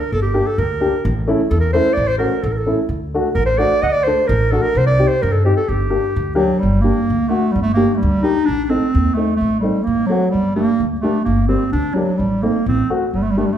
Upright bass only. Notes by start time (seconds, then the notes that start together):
0.12 G1
0.58 D2
1.05 A1
1.51 E2
1.97 A1
2.43 A1
2.89 D2
3.35 A1
3.83 D2
4.29 A1
4.75 C2
5.23 G2
5.69 G1
6.16 D2
6.63 G1
7.10 D2
7.55 G1
8.03 D2
8.48 A1
8.95 D#2
9.41 A1
9.87 A1
10.34 G1
10.80 D2
11.26 G1
11.73 D2
12.19 A1
12.66 A1
13.13 G1